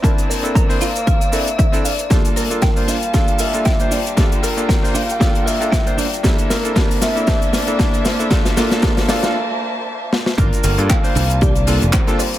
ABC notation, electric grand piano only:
X:1
M:4/4
L:1/16
Q:"Swing 16ths" 1/4=116
K:Gdor
V:1 name="Electric grand piano"
[CDEa]3 [CDEA]2 [CDEc] z4 [CDEA] z2 [CDEA] z2 | [B,DFA]3 [B,DFA]2 [B,DFc] z2 [B,DFA]3 [B,DFA]2 [B,DFc] z2 | [B,DFA]3 [B,DFA]2 [B,DFc] z2 [B,DFA]3 [B,DFA]2 [B,DFc] z2 | [B,DEA]3 [B,DEA] [B,DEa]3 [B,DEA] [B,DEa]3 [B,DEA] [B,DEa]3 [B,DEA] |
[B,DFA]2 [B,DFA]2 [B,DFA]2 [B,DFA]2 z8 | [B,DFB]3 [B,DFA]2 [B,DFc] z4 [B,DFA] z2 [B,DFA] z2 |]